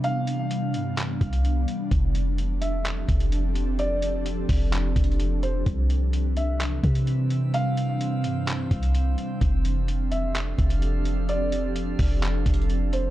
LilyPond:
<<
  \new Staff \with { instrumentName = "Felt piano" } { \time 4/4 \key f \lydian \tempo 4 = 128 f''1 | r4. e''8 r2 | d''2.~ d''8 c''8 | r4. e''8 r2 |
f''1 | r4. e''8 r2 | d''2.~ d''8 c''8 | }
  \new Staff \with { instrumentName = "Synth texture" } { \time 4/4 \key f \lydian << { r1 | r1 | r1 | <c' e'''>1~ |
<c' e'''>1 | <d' f''>1~ | <d' f''>1 | } \\ { r1 | r1 | r1 | b'1 |
c''1 | a'1~ | a'1 | } >> }
  \new Staff \with { instrumentName = "Ambient pad" } { \time 4/4 \key f \lydian <c e g b d'>1 | <f c' g' a'>1~ | <f c' g' a'>1 | <c e g c'>1~ |
<c e g c'>1 | <f c' d' g' a'>1~ | <f c' d' g' a'>1 | }
  \new Staff \with { instrumentName = "808-style bass" } { \clef bass \time 4/4 \key f \lydian c4. g,4 c,4 r8 | f,,2~ f,,8 f,,4.~ | f,,4. f,,4 f,,4. | c,2~ c,8 c4.~ |
c4. g,4 c,4 r8 | f,,2~ f,,8 f,,4.~ | f,,4. f,,4 f,,4. | }
  \new DrumStaff \with { instrumentName = "Drums" } \drummode { \time 4/4 hh8 hh8 hh8 hh8 <hc hh>8 <hh bd>16 hh16 hh8 hh8 | <hh bd>8 hh8 hh8 hh8 <hc hh>8 <hh bd>16 hh16 hh8 hh8 | hh8 hh8 hh8 <hho bd>8 \tuplet 3/2 { <hc hh>16 r16 r16 <hh bd>16 hh16 hh16 } hh8 hh8 | <hh bd>8 hh8 hh8 hh8 <hc hh>8 <hh bd>16 hh16 hh8 hh8 |
hh8 hh8 hh8 hh8 <hc hh>8 <hh bd>16 hh16 hh8 hh8 | <hh bd>8 hh8 hh8 hh8 <hc hh>8 <hh bd>16 hh16 hh8 hh8 | hh8 hh8 hh8 <hho bd>8 \tuplet 3/2 { <hc hh>16 r16 r16 <hh bd>16 hh16 hh16 } hh8 hh8 | }
>>